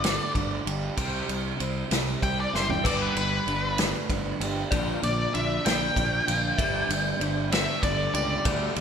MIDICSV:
0, 0, Header, 1, 8, 480
1, 0, Start_track
1, 0, Tempo, 623701
1, 750, Time_signature, 6, 3, 24, 8
1, 6777, End_track
2, 0, Start_track
2, 0, Title_t, "Lead electric guitar"
2, 0, Program_c, 0, 29
2, 0, Note_on_c, 0, 74, 93
2, 241, Note_off_c, 0, 74, 0
2, 1716, Note_on_c, 0, 79, 112
2, 1830, Note_off_c, 0, 79, 0
2, 1850, Note_on_c, 0, 74, 84
2, 1957, Note_off_c, 0, 74, 0
2, 1967, Note_on_c, 0, 72, 90
2, 2076, Note_off_c, 0, 72, 0
2, 2078, Note_on_c, 0, 79, 87
2, 2191, Note_off_c, 0, 79, 0
2, 2202, Note_on_c, 0, 74, 85
2, 2313, Note_off_c, 0, 74, 0
2, 2324, Note_on_c, 0, 71, 83
2, 2433, Note_off_c, 0, 71, 0
2, 2442, Note_on_c, 0, 71, 90
2, 2902, Note_off_c, 0, 71, 0
2, 3878, Note_on_c, 0, 74, 88
2, 4108, Note_off_c, 0, 74, 0
2, 4112, Note_on_c, 0, 76, 84
2, 4345, Note_off_c, 0, 76, 0
2, 4350, Note_on_c, 0, 79, 100
2, 5760, Note_off_c, 0, 79, 0
2, 5793, Note_on_c, 0, 76, 90
2, 6024, Note_off_c, 0, 76, 0
2, 6027, Note_on_c, 0, 74, 91
2, 6262, Note_off_c, 0, 74, 0
2, 6271, Note_on_c, 0, 74, 106
2, 6504, Note_off_c, 0, 74, 0
2, 6777, End_track
3, 0, Start_track
3, 0, Title_t, "Synth bell"
3, 0, Program_c, 1, 98
3, 2184, Note_on_c, 1, 71, 85
3, 3622, Note_on_c, 1, 74, 100
3, 3671, Note_off_c, 1, 71, 0
3, 5036, Note_off_c, 1, 74, 0
3, 5063, Note_on_c, 1, 76, 117
3, 6506, Note_on_c, 1, 74, 96
3, 6550, Note_off_c, 1, 76, 0
3, 6777, Note_off_c, 1, 74, 0
3, 6777, End_track
4, 0, Start_track
4, 0, Title_t, "Overdriven electric guitar"
4, 0, Program_c, 2, 29
4, 0, Note_on_c, 2, 55, 74
4, 0, Note_on_c, 2, 62, 69
4, 31, Note_on_c, 2, 57, 72
4, 264, Note_off_c, 2, 62, 0
4, 273, Note_on_c, 2, 62, 69
4, 516, Note_on_c, 2, 67, 70
4, 750, Note_on_c, 2, 48, 72
4, 751, Note_off_c, 2, 57, 0
4, 752, Note_off_c, 2, 62, 0
4, 1230, Note_on_c, 2, 60, 67
4, 1469, Note_off_c, 2, 55, 0
4, 1469, Note_on_c, 2, 55, 68
4, 1695, Note_off_c, 2, 60, 0
4, 1704, Note_on_c, 2, 60, 69
4, 1948, Note_off_c, 2, 67, 0
4, 1951, Note_off_c, 2, 48, 0
4, 1951, Note_on_c, 2, 64, 68
4, 2181, Note_off_c, 2, 55, 0
4, 2188, Note_off_c, 2, 60, 0
4, 2190, Note_on_c, 2, 55, 76
4, 2191, Note_off_c, 2, 64, 0
4, 2672, Note_on_c, 2, 62, 69
4, 2910, Note_on_c, 2, 57, 73
4, 3150, Note_off_c, 2, 62, 0
4, 3153, Note_on_c, 2, 62, 73
4, 3391, Note_off_c, 2, 55, 0
4, 3393, Note_on_c, 2, 67, 71
4, 3628, Note_on_c, 2, 46, 79
4, 3631, Note_off_c, 2, 57, 0
4, 3632, Note_off_c, 2, 67, 0
4, 4105, Note_off_c, 2, 62, 0
4, 4108, Note_on_c, 2, 62, 72
4, 4343, Note_on_c, 2, 58, 72
4, 4585, Note_off_c, 2, 62, 0
4, 4588, Note_on_c, 2, 62, 75
4, 4828, Note_on_c, 2, 65, 66
4, 4830, Note_off_c, 2, 46, 0
4, 5059, Note_on_c, 2, 55, 81
4, 5067, Note_off_c, 2, 58, 0
4, 5070, Note_off_c, 2, 65, 0
4, 5535, Note_off_c, 2, 62, 0
4, 5538, Note_on_c, 2, 62, 72
4, 5784, Note_on_c, 2, 57, 76
4, 6022, Note_off_c, 2, 62, 0
4, 6025, Note_on_c, 2, 62, 67
4, 6266, Note_on_c, 2, 67, 71
4, 6500, Note_off_c, 2, 55, 0
4, 6503, Note_on_c, 2, 50, 83
4, 6777, Note_off_c, 2, 50, 0
4, 6777, Note_off_c, 2, 57, 0
4, 6777, Note_off_c, 2, 62, 0
4, 6777, Note_off_c, 2, 67, 0
4, 6777, End_track
5, 0, Start_track
5, 0, Title_t, "String machine"
5, 0, Program_c, 3, 50
5, 2183, Note_on_c, 3, 57, 76
5, 2185, Note_on_c, 3, 59, 70
5, 2190, Note_on_c, 3, 67, 89
5, 2191, Note_on_c, 3, 62, 77
5, 2192, Note_on_c, 3, 55, 72
5, 3613, Note_off_c, 3, 57, 0
5, 3614, Note_off_c, 3, 59, 0
5, 3616, Note_off_c, 3, 67, 0
5, 3616, Note_on_c, 3, 58, 77
5, 3616, Note_on_c, 3, 65, 72
5, 3618, Note_off_c, 3, 55, 0
5, 3619, Note_on_c, 3, 70, 84
5, 3621, Note_on_c, 3, 53, 72
5, 5049, Note_off_c, 3, 65, 0
5, 5050, Note_off_c, 3, 58, 0
5, 5051, Note_off_c, 3, 70, 0
5, 5052, Note_off_c, 3, 53, 0
5, 5065, Note_on_c, 3, 57, 76
5, 5067, Note_on_c, 3, 59, 75
5, 5067, Note_on_c, 3, 69, 89
5, 5068, Note_on_c, 3, 67, 75
5, 6494, Note_off_c, 3, 59, 0
5, 6504, Note_on_c, 3, 55, 73
5, 6777, Note_off_c, 3, 55, 0
5, 6777, Note_off_c, 3, 57, 0
5, 6777, Note_off_c, 3, 62, 0
5, 6777, Note_off_c, 3, 67, 0
5, 6777, Note_off_c, 3, 69, 0
5, 6777, End_track
6, 0, Start_track
6, 0, Title_t, "Overdriven electric guitar"
6, 0, Program_c, 4, 29
6, 27, Note_on_c, 4, 43, 72
6, 30, Note_on_c, 4, 50, 81
6, 244, Note_off_c, 4, 43, 0
6, 246, Note_off_c, 4, 50, 0
6, 263, Note_on_c, 4, 43, 78
6, 265, Note_on_c, 4, 50, 80
6, 483, Note_off_c, 4, 43, 0
6, 483, Note_off_c, 4, 50, 0
6, 502, Note_on_c, 4, 43, 69
6, 503, Note_on_c, 4, 50, 74
6, 722, Note_off_c, 4, 43, 0
6, 722, Note_off_c, 4, 50, 0
6, 746, Note_on_c, 4, 48, 91
6, 749, Note_on_c, 4, 55, 88
6, 752, Note_on_c, 4, 60, 98
6, 974, Note_off_c, 4, 48, 0
6, 975, Note_off_c, 4, 55, 0
6, 976, Note_off_c, 4, 60, 0
6, 994, Note_on_c, 4, 48, 66
6, 998, Note_on_c, 4, 55, 71
6, 1209, Note_off_c, 4, 48, 0
6, 1210, Note_off_c, 4, 55, 0
6, 1226, Note_on_c, 4, 48, 80
6, 1230, Note_on_c, 4, 55, 74
6, 1444, Note_off_c, 4, 48, 0
6, 1446, Note_off_c, 4, 55, 0
6, 1470, Note_on_c, 4, 48, 70
6, 1470, Note_on_c, 4, 55, 74
6, 1686, Note_off_c, 4, 48, 0
6, 1687, Note_off_c, 4, 55, 0
6, 1710, Note_on_c, 4, 48, 73
6, 1714, Note_on_c, 4, 55, 73
6, 1927, Note_off_c, 4, 48, 0
6, 1929, Note_off_c, 4, 55, 0
6, 1949, Note_on_c, 4, 48, 59
6, 1951, Note_on_c, 4, 55, 72
6, 2166, Note_off_c, 4, 48, 0
6, 2167, Note_off_c, 4, 55, 0
6, 2185, Note_on_c, 4, 43, 93
6, 2187, Note_on_c, 4, 50, 82
6, 2191, Note_on_c, 4, 55, 96
6, 2414, Note_off_c, 4, 43, 0
6, 2415, Note_off_c, 4, 50, 0
6, 2417, Note_off_c, 4, 55, 0
6, 2435, Note_on_c, 4, 43, 68
6, 2440, Note_on_c, 4, 50, 66
6, 2649, Note_off_c, 4, 43, 0
6, 2652, Note_off_c, 4, 50, 0
6, 2674, Note_on_c, 4, 43, 69
6, 2680, Note_on_c, 4, 50, 91
6, 2889, Note_off_c, 4, 43, 0
6, 2892, Note_off_c, 4, 50, 0
6, 2910, Note_on_c, 4, 43, 71
6, 2913, Note_on_c, 4, 50, 79
6, 3127, Note_off_c, 4, 43, 0
6, 3128, Note_off_c, 4, 50, 0
6, 3154, Note_on_c, 4, 43, 67
6, 3157, Note_on_c, 4, 50, 86
6, 3369, Note_off_c, 4, 43, 0
6, 3370, Note_off_c, 4, 50, 0
6, 3392, Note_on_c, 4, 43, 71
6, 3395, Note_on_c, 4, 50, 74
6, 3607, Note_off_c, 4, 43, 0
6, 3609, Note_off_c, 4, 50, 0
6, 3629, Note_on_c, 4, 46, 94
6, 3632, Note_on_c, 4, 50, 94
6, 3636, Note_on_c, 4, 53, 97
6, 3856, Note_off_c, 4, 46, 0
6, 3857, Note_off_c, 4, 50, 0
6, 3859, Note_off_c, 4, 53, 0
6, 3870, Note_on_c, 4, 50, 72
6, 3871, Note_on_c, 4, 46, 72
6, 4087, Note_off_c, 4, 46, 0
6, 4087, Note_off_c, 4, 50, 0
6, 4112, Note_on_c, 4, 46, 80
6, 4112, Note_on_c, 4, 50, 77
6, 4328, Note_off_c, 4, 46, 0
6, 4328, Note_off_c, 4, 50, 0
6, 4352, Note_on_c, 4, 46, 74
6, 4354, Note_on_c, 4, 50, 82
6, 4568, Note_off_c, 4, 46, 0
6, 4569, Note_off_c, 4, 50, 0
6, 4587, Note_on_c, 4, 46, 74
6, 4591, Note_on_c, 4, 50, 73
6, 4805, Note_off_c, 4, 46, 0
6, 4807, Note_off_c, 4, 50, 0
6, 4828, Note_on_c, 4, 46, 70
6, 4830, Note_on_c, 4, 50, 74
6, 5046, Note_off_c, 4, 46, 0
6, 5046, Note_off_c, 4, 50, 0
6, 5063, Note_on_c, 4, 43, 82
6, 5068, Note_on_c, 4, 50, 88
6, 5069, Note_on_c, 4, 55, 93
6, 5293, Note_off_c, 4, 43, 0
6, 5295, Note_off_c, 4, 50, 0
6, 5296, Note_off_c, 4, 55, 0
6, 5308, Note_on_c, 4, 43, 60
6, 5310, Note_on_c, 4, 50, 80
6, 5526, Note_off_c, 4, 43, 0
6, 5527, Note_off_c, 4, 50, 0
6, 5543, Note_on_c, 4, 43, 83
6, 5549, Note_on_c, 4, 50, 92
6, 5763, Note_off_c, 4, 43, 0
6, 5766, Note_off_c, 4, 50, 0
6, 5791, Note_on_c, 4, 43, 77
6, 5791, Note_on_c, 4, 50, 79
6, 6007, Note_off_c, 4, 43, 0
6, 6007, Note_off_c, 4, 50, 0
6, 6027, Note_on_c, 4, 43, 73
6, 6034, Note_on_c, 4, 50, 85
6, 6245, Note_off_c, 4, 43, 0
6, 6248, Note_off_c, 4, 50, 0
6, 6268, Note_on_c, 4, 43, 65
6, 6271, Note_on_c, 4, 50, 72
6, 6486, Note_off_c, 4, 43, 0
6, 6487, Note_off_c, 4, 50, 0
6, 6499, Note_on_c, 4, 50, 82
6, 6505, Note_on_c, 4, 55, 91
6, 6511, Note_on_c, 4, 57, 92
6, 6730, Note_off_c, 4, 50, 0
6, 6734, Note_off_c, 4, 55, 0
6, 6736, Note_off_c, 4, 57, 0
6, 6740, Note_on_c, 4, 50, 72
6, 6746, Note_on_c, 4, 55, 83
6, 6777, Note_off_c, 4, 50, 0
6, 6777, Note_off_c, 4, 55, 0
6, 6777, End_track
7, 0, Start_track
7, 0, Title_t, "Fingered electric bass"
7, 0, Program_c, 5, 33
7, 0, Note_on_c, 5, 31, 86
7, 138, Note_off_c, 5, 31, 0
7, 268, Note_on_c, 5, 31, 83
7, 445, Note_off_c, 5, 31, 0
7, 503, Note_on_c, 5, 31, 91
7, 682, Note_off_c, 5, 31, 0
7, 748, Note_on_c, 5, 36, 92
7, 925, Note_off_c, 5, 36, 0
7, 990, Note_on_c, 5, 36, 88
7, 1166, Note_off_c, 5, 36, 0
7, 1231, Note_on_c, 5, 36, 86
7, 1407, Note_off_c, 5, 36, 0
7, 1469, Note_on_c, 5, 36, 87
7, 1646, Note_off_c, 5, 36, 0
7, 1711, Note_on_c, 5, 36, 85
7, 1887, Note_off_c, 5, 36, 0
7, 1951, Note_on_c, 5, 30, 87
7, 2127, Note_off_c, 5, 30, 0
7, 2190, Note_on_c, 5, 31, 90
7, 2367, Note_off_c, 5, 31, 0
7, 2426, Note_on_c, 5, 31, 86
7, 2604, Note_off_c, 5, 31, 0
7, 2668, Note_on_c, 5, 31, 86
7, 3022, Note_off_c, 5, 31, 0
7, 3153, Note_on_c, 5, 31, 86
7, 3329, Note_off_c, 5, 31, 0
7, 3387, Note_on_c, 5, 31, 88
7, 3565, Note_off_c, 5, 31, 0
7, 3627, Note_on_c, 5, 34, 99
7, 3805, Note_off_c, 5, 34, 0
7, 3868, Note_on_c, 5, 34, 94
7, 4046, Note_off_c, 5, 34, 0
7, 4117, Note_on_c, 5, 34, 88
7, 4291, Note_off_c, 5, 34, 0
7, 4353, Note_on_c, 5, 34, 89
7, 4529, Note_off_c, 5, 34, 0
7, 4590, Note_on_c, 5, 34, 92
7, 4767, Note_off_c, 5, 34, 0
7, 4833, Note_on_c, 5, 34, 87
7, 5008, Note_off_c, 5, 34, 0
7, 5066, Note_on_c, 5, 31, 97
7, 5244, Note_off_c, 5, 31, 0
7, 5301, Note_on_c, 5, 31, 96
7, 5481, Note_off_c, 5, 31, 0
7, 5539, Note_on_c, 5, 31, 84
7, 5896, Note_off_c, 5, 31, 0
7, 6024, Note_on_c, 5, 31, 91
7, 6203, Note_off_c, 5, 31, 0
7, 6263, Note_on_c, 5, 37, 94
7, 6442, Note_off_c, 5, 37, 0
7, 6507, Note_on_c, 5, 38, 94
7, 6685, Note_off_c, 5, 38, 0
7, 6745, Note_on_c, 5, 38, 90
7, 6777, Note_off_c, 5, 38, 0
7, 6777, End_track
8, 0, Start_track
8, 0, Title_t, "Drums"
8, 29, Note_on_c, 9, 51, 89
8, 36, Note_on_c, 9, 38, 104
8, 106, Note_off_c, 9, 51, 0
8, 113, Note_off_c, 9, 38, 0
8, 271, Note_on_c, 9, 36, 82
8, 272, Note_on_c, 9, 51, 68
8, 348, Note_off_c, 9, 36, 0
8, 349, Note_off_c, 9, 51, 0
8, 516, Note_on_c, 9, 51, 75
8, 593, Note_off_c, 9, 51, 0
8, 749, Note_on_c, 9, 51, 100
8, 751, Note_on_c, 9, 36, 114
8, 826, Note_off_c, 9, 51, 0
8, 828, Note_off_c, 9, 36, 0
8, 994, Note_on_c, 9, 51, 78
8, 1071, Note_off_c, 9, 51, 0
8, 1232, Note_on_c, 9, 51, 74
8, 1309, Note_off_c, 9, 51, 0
8, 1470, Note_on_c, 9, 51, 94
8, 1478, Note_on_c, 9, 38, 98
8, 1547, Note_off_c, 9, 51, 0
8, 1555, Note_off_c, 9, 38, 0
8, 1712, Note_on_c, 9, 36, 77
8, 1715, Note_on_c, 9, 51, 70
8, 1789, Note_off_c, 9, 36, 0
8, 1792, Note_off_c, 9, 51, 0
8, 1960, Note_on_c, 9, 38, 64
8, 2037, Note_off_c, 9, 38, 0
8, 2076, Note_on_c, 9, 43, 87
8, 2153, Note_off_c, 9, 43, 0
8, 2193, Note_on_c, 9, 36, 114
8, 2198, Note_on_c, 9, 49, 94
8, 2198, Note_on_c, 9, 55, 80
8, 2270, Note_off_c, 9, 36, 0
8, 2275, Note_off_c, 9, 49, 0
8, 2275, Note_off_c, 9, 55, 0
8, 2435, Note_on_c, 9, 51, 76
8, 2512, Note_off_c, 9, 51, 0
8, 2675, Note_on_c, 9, 51, 66
8, 2752, Note_off_c, 9, 51, 0
8, 2909, Note_on_c, 9, 51, 85
8, 2917, Note_on_c, 9, 38, 105
8, 2986, Note_off_c, 9, 51, 0
8, 2994, Note_off_c, 9, 38, 0
8, 3152, Note_on_c, 9, 36, 82
8, 3153, Note_on_c, 9, 51, 68
8, 3229, Note_off_c, 9, 36, 0
8, 3230, Note_off_c, 9, 51, 0
8, 3395, Note_on_c, 9, 51, 73
8, 3472, Note_off_c, 9, 51, 0
8, 3629, Note_on_c, 9, 51, 93
8, 3631, Note_on_c, 9, 36, 112
8, 3706, Note_off_c, 9, 51, 0
8, 3708, Note_off_c, 9, 36, 0
8, 3873, Note_on_c, 9, 51, 77
8, 3950, Note_off_c, 9, 51, 0
8, 4114, Note_on_c, 9, 51, 67
8, 4191, Note_off_c, 9, 51, 0
8, 4353, Note_on_c, 9, 51, 89
8, 4361, Note_on_c, 9, 38, 108
8, 4430, Note_off_c, 9, 51, 0
8, 4438, Note_off_c, 9, 38, 0
8, 4590, Note_on_c, 9, 36, 80
8, 4594, Note_on_c, 9, 51, 75
8, 4667, Note_off_c, 9, 36, 0
8, 4671, Note_off_c, 9, 51, 0
8, 4833, Note_on_c, 9, 51, 83
8, 4910, Note_off_c, 9, 51, 0
8, 5068, Note_on_c, 9, 36, 117
8, 5071, Note_on_c, 9, 51, 99
8, 5145, Note_off_c, 9, 36, 0
8, 5148, Note_off_c, 9, 51, 0
8, 5313, Note_on_c, 9, 51, 83
8, 5390, Note_off_c, 9, 51, 0
8, 5549, Note_on_c, 9, 51, 76
8, 5626, Note_off_c, 9, 51, 0
8, 5789, Note_on_c, 9, 51, 98
8, 5797, Note_on_c, 9, 38, 107
8, 5866, Note_off_c, 9, 51, 0
8, 5874, Note_off_c, 9, 38, 0
8, 6025, Note_on_c, 9, 36, 87
8, 6026, Note_on_c, 9, 51, 77
8, 6102, Note_off_c, 9, 36, 0
8, 6103, Note_off_c, 9, 51, 0
8, 6268, Note_on_c, 9, 51, 79
8, 6345, Note_off_c, 9, 51, 0
8, 6503, Note_on_c, 9, 51, 94
8, 6506, Note_on_c, 9, 36, 118
8, 6580, Note_off_c, 9, 51, 0
8, 6583, Note_off_c, 9, 36, 0
8, 6744, Note_on_c, 9, 51, 76
8, 6777, Note_off_c, 9, 51, 0
8, 6777, End_track
0, 0, End_of_file